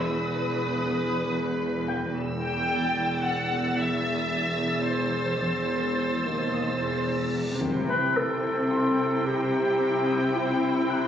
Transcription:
Already playing: double bass section E1, cello section E2, violin section B4 B5 E6
0.00 harp E6
0.15 violin section D#6
1.88 harp G5 G6
2.16 double bass section E1, cello section E2, violin section E6
2.43 violin section G5
2.71 violin section A6
3.25 violin section F#5
3.79 violin section E5
4.89 violin section C5, reverse cymbal
5.42 cello section E2
6.24 cello section D#2
6.53 harp D#6
6.79 cello section E2
7.60 double bass section C2, cello section C3, viola section C4 E4, violin section G5, taiko, impact
7.89 clarinet B4
8.17 clarinet A4
8.43 taiko
8.71 harp C6
9.26 clarinet G4
10.06 harp D#6
10.35 clarinet E4
10.90 harp F#6

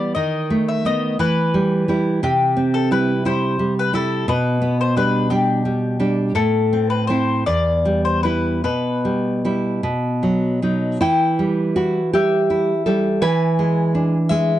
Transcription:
Already playing: nylon-string guitar E3 G3 B3, mandolin D5
0.15 nylon-string guitar D#3, mandolin D#5
0.50 nylon-string guitar A3
0.69 mandolin E5
0.85 nylon-string guitar A3 B3, mandolin D#5
1.19 nylon-string guitar E3, mandolin B4
1.54 nylon-string guitar G3
1.88 nylon-string guitar G3 E4
2.23 nylon-string guitar C3, mandolin G4
2.57 nylon-string guitar C4
2.74 mandolin A4
2.91 nylon-string guitar G3 E4, mandolin B4
3.25 nylon-string guitar G3 E4, mandolin C5
3.59 nylon-string guitar G3
3.79 mandolin B4
3.93 nylon-string guitar G3 E4, mandolin A4
4.28 nylon-string guitar B2, mandolin B4
4.62 nylon-string guitar B3
4.81 mandolin C5
4.96 nylon-string guitar G3 D4, mandolin B4
5.30 nylon-string guitar G3 D4, mandolin G4
5.65 nylon-string guitar G3
6.00 nylon-string guitar G3 D4
6.35 nylon-string guitar A2, mandolin A4
6.73 nylon-string guitar C4
6.90 mandolin B4
7.07 nylon-string guitar C4 E4, mandolin C5
7.46 nylon-string guitar E2, mandolin D5
7.85 nylon-string guitar G3
8.05 mandolin C5
8.23 nylon-string guitar G3 E4, mandolin B4
8.64 nylon-string guitar B2, mandolin B4
9.05 nylon-string guitar G3
9.45 nylon-string guitar G3 E4
9.83 nylon-string guitar B2
10.23 nylon-string guitar F#3
10.62 nylon-string guitar F#3 D#4
11.01 nylon-string guitar E3 E4, mandolin G5
11.39 nylon-string guitar G3
11.76 nylon-string guitar E4 F#4
12.13 nylon-string guitar G3 G4, mandolin E5
12.50 nylon-string guitar E4
12.86 nylon-string guitar G3 A4
13.22 nylon-string guitar E3 B4, mandolin G#5
13.59 nylon-string guitar G#3
13.95 nylon-string guitar D4
14.29 nylon-string guitar G#3, mandolin E5

